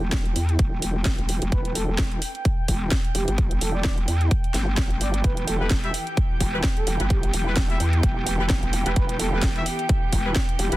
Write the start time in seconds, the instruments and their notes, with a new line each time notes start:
Already playing: wobble bass E1, analog synth pad G5
0.12 kick, snare, closed hi-hat
0.26 closed hi-hat
0.36 wobble bass E2, open hi-hat
0.49 closed hi-hat
0.59 wobble bass E1, kick, closed hi-hat
0.82 open hi-hat
1.05 wobble bass E1, kick, snare, closed hi-hat
1.18 wobble bass G1, closed hi-hat
1.29 wobble bass E1, open hi-hat
1.42 wobble bass E1, closed hi-hat
1.52 wobble bass E1, soft synth lead B4, kick, closed hi-hat
1.65 soft synth lead B4, closed hi-hat
1.75 soft synth lead A4, open hi-hat
1.88 wobble bass E1, soft synth lead A4
1.98 wobble bass E1, kick, snare, closed hi-hat
2.12 closed hi-hat
2.22 open hi-hat
2.35 closed hi-hat
2.45 kick, closed hi-hat
2.68 wobble bass E1, kick, open hi-hat
2.91 kick, snare, closed hi-hat
3.05 closed hi-hat
3.15 wobble bass E1, soft synth lead G4, open hi-hat
3.28 wobble bass G1, closed hi-hat
3.38 kick, closed hi-hat
3.51 closed hi-hat
3.61 wobble bass E1, soft synth lead A4, open hi-hat
3.75 soft synth lead D5
3.84 soft synth lead D5, kick, snare, closed hi-hat
3.98 closed hi-hat
4.08 wobble bass E2, open hi-hat
4.21 closed hi-hat
4.31 kick, closed hi-hat
4.44 closed hi-hat
4.54 wobble bass G1, snare, open hi-hat
4.77 kick, snare, closed hi-hat
4.91 closed hi-hat
5.01 wobble bass G1, soft synth lead D5, open hi-hat
5.14 soft synth lead D5, closed hi-hat
5.24 wobble bass E1, string section E3 B3 G4, soft synth lead B4, kick, closed hi-hat
5.37 soft synth lead B4, closed hi-hat
5.48 soft synth lead A4, open hi-hat
5.60 wobble bass E1, horn section G3 E4 B4, soft synth lead A4
5.70 wobble bass E1, kick, snare, closed hi-hat
5.84 horn section G3 E4 E5, closed hi-hat
5.94 open hi-hat
6.07 closed hi-hat
6.17 kick, closed hi-hat
6.40 wobble bass E1, kick, open hi-hat
6.53 horn section G3 E4 B4
6.64 kick, snare, closed hi-hat
6.77 soft synth lead A4, closed hi-hat
6.87 wobble bass E1, open hi-hat
7.00 wobble bass G1, horn section G3 E4 B4, closed hi-hat
7.10 soft synth lead G4, kick, closed hi-hat
7.23 soft synth lead G4, closed hi-hat
7.34 wobble bass E1, open hi-hat
7.46 horn section G3 E4 B4
7.57 kick, snare, closed hi-hat
7.70 horn section G3 E4 E5, closed hi-hat
7.80 wobble bass E2, open hi-hat
7.93 closed hi-hat
8.03 wobble bass E1, kick, closed hi-hat
8.27 open hi-hat
8.39 horn section G3 E4 B4
8.50 wobble bass E1, kick, snare, closed hi-hat
8.63 wobble bass G1, closed hi-hat
8.73 wobble bass E1, open hi-hat
8.86 wobble bass E1, horn section G3 E4 B4, closed hi-hat
8.96 wobble bass E1, soft synth lead B4, kick, closed hi-hat
9.09 soft synth lead B4, closed hi-hat
9.19 soft synth lead A4, open hi-hat
9.32 wobble bass E1, horn section G3 E4 B4, soft synth lead A4
9.42 wobble bass E1, kick, snare, closed hi-hat
9.56 horn section G3 E4 E5, closed hi-hat
9.66 open hi-hat
9.79 closed hi-hat
9.89 kick, closed hi-hat
10.13 wobble bass E1, kick, open hi-hat
10.26 horn section G3 E4 B4
10.36 kick, snare, closed hi-hat
10.49 closed hi-hat
10.59 wobble bass E1, soft synth lead G4, open hi-hat
10.72 wobble bass G1, horn section G3 E4 B4, closed hi-hat